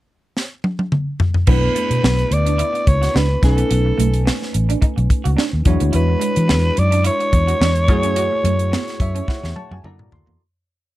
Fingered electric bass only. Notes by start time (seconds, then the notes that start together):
1.48 B1
1.90 B2
2.04 B1
2.31 D2
2.87 C#2
3.15 C#2
3.43 B1
3.71 B1
3.99 B1
4.55 A1
4.98 B1
5.25 C#2
5.53 D#2
5.66 E2
5.81 D2
5.94 E2
6.37 E3
6.50 E2
6.78 F#2
7.33 E2
7.61 E2
7.89 F#2
8.44 F#2
9.00 F#2
9.44 E2
9.71 F#2
9.84 F#2
10.00 G2
10.12 D2
10.28 E2